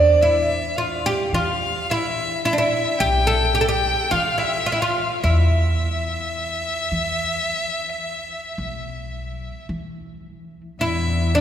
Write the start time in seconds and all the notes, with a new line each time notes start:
Already playing: E2 D4 D5
0.21 E4 E5
0.77 F4 F5
1.06 G4
1.33 E3 F4 F5
1.89 E4 E5
2.44 E4 E5
2.53 D4
2.58 E4 E5
2.99 B1 G4 G5
3.27 A4
3.55 G4
3.61 A4
3.69 G4 G5
4.11 E3 F4 F5
4.38 E4 E5
4.66 F4
4.72 E4
4.81 F4 F5
5.22 E2 E4 E5
6.92 E3
8.58 B1
9.69 E3
10.81 E2 E4 E5
11.35 D4 D5